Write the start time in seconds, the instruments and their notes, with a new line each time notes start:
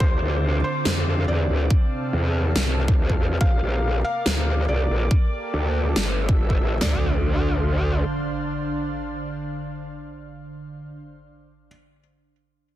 Already playing: analog synth pad D5
0.00 wobble bass D2, analog synth pad D3 C4 F4, felt piano C5, kick
0.22 wobble bass D2
0.64 felt piano C5
0.85 wobble bass F2, snare
1.28 wobble bass E2, felt piano D5
1.49 wobble bass D2
1.70 analog synth pad C3 A4 F5, kick
2.13 wobble bass E2
2.56 wobble bass C2, snare
2.88 kick
2.98 wobble bass D2
3.10 kick
3.19 wobble bass E2
3.41 wobble bass A#1, analog synth pad A#3 A#4 D5, felt piano F5, kick
3.62 wobble bass A#1
4.04 felt piano F5
4.26 wobble bass D2, snare
4.68 wobble bass C2, felt piano D5
4.90 wobble bass A#1
5.11 analog synth pad A#3 G4 A4, kick
5.54 wobble bass D2
5.96 wobble bass G1, analog synth pad A3 E5, snare
6.29 kick
6.50 kick
6.60 wobble bass A1
6.81 wobble bass D2, analog synth pad D3 D4 C5 F5, felt piano D5, snare, impact